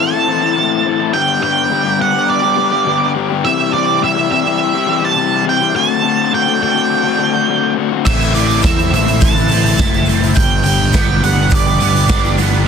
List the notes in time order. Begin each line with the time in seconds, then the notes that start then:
Already playing: E3 C4 E4 A4 C5 E5 A5 E6
0.13 C4 E4 A4
0.28 E3 C4 E4 A4
0.41 C4 E4 A4
0.56 A2 E3 C4 E4 A4
0.85 E3 C4 E4 A4
0.99 C4 E4 A4
1.13 G2 D3 G3 B3 D4 G4 D5 G5 D6
1.41 G3 B3 D4 G4 G5
1.70 G2 D3 G3 B3 D4 G4
1.84 G3 B3 D4 G4
1.98 G3 B3 D4 G4 F#5
2.13 G3 B3 D4 G4
2.30 D5
2.42 G3 B3 D4 G4
2.56 G3 B3 D4 G4
2.71 G3 B3 D4 G4
2.85 G2 D3 G3 B3 D4 G4
3.15 G3 B3 D4 G4
3.30 G3 B3 D4 G4
3.44 C3 E3 G3 C4 G4 E5 C6
3.73 E3 G3 C4 G4 D5
4.02 C3 E3 G3 C4 G4 E5
4.16 G3 C4 G4
4.29 E3 G3 C4 G4 E5
4.44 G3 C4 G4
4.73 G3 C4 G4
4.86 E3 G3 C4 G4
5.01 G3 C4 G4
5.05 A5
5.15 C3 E3 G3 C4 G4
5.45 E3 G3 C4 G4
5.49 G5
5.60 G3 C4 G4
5.74 D3 A3 C4 F#4 A4 D5 A5
6.03 D3 A3 C4 F#4
6.31 D3 A3 C4 F#4 G5
6.46 A3 C4 F#4
6.60 D3 A3 C4 F#4 G5
6.75 A3 C4 F#4
7.04 A3 C4 F#4
7.18 D3 A3 C4 F#4
7.34 A3 C4 F#4
7.49 D3 A3 C4 F#4
7.77 D3 A3 C4 F#4
7.92 A3 C4 F#4
8.05 A1 A2 E3 A3 C4 E4 A4 C5 E5 C6, kick, crash, shaker
8.20 closed hi-hat, shaker
8.34 E3 A3 C4 E4 D5, closed hi-hat, shaker
8.50 closed hi-hat
8.62 E2 A2 E3 A3 C4 E4 E5, kick, snare, closed hi-hat, shaker
8.77 A3 C4 E4, closed hi-hat
8.92 A1 E3 A3 C4 E4 E5, closed hi-hat
9.07 A3 C4 E4, closed hi-hat
9.21 A1 E3 A5, kick, closed hi-hat, shaker
9.35 A3 C4 E4, closed hi-hat, shaker
9.49 E3 A3 C4 E4, closed hi-hat, shaker
9.64 A3 C4 E4, closed hi-hat
9.77 F#1 A2 E3 A3 C4 E4, kick, snare, closed hi-hat, shaker
9.94 closed hi-hat
10.06 E3 A3 C4 E4, closed hi-hat, shaker
10.21 A3 C4 E4, closed hi-hat
10.35 G1 G2 D3 G3 B3 D4 G4 D5 G5 B5, kick, closed hi-hat, shaker
10.49 shaker
10.63 G3 B3 D4 G4 G5, closed hi-hat, shaker
10.93 G2 D3 G3 B3 D4 G4, kick, snare, closed hi-hat, shaker
11.08 G3 B3 D4 G4
11.23 G1 G3 B3 D4 G4 F#5, closed hi-hat
11.38 G3 B3 D4 G4
11.50 G1, kick, closed hi-hat, shaker
11.54 D5
11.66 G3 B3 D4 G4, closed hi-hat, shaker
11.80 G3 B3 D4 G4, closed hi-hat, shaker
11.94 G3 B3 D4 G4, closed hi-hat
12.08 G1 G2 D3 G3 B3 D4 G4, kick, snare, closed hi-hat, shaker
12.24 closed hi-hat
12.37 G3 B3 D4 G4, closed hi-hat, shaker
12.51 G3 B3 D4 G4, shaker
12.64 G3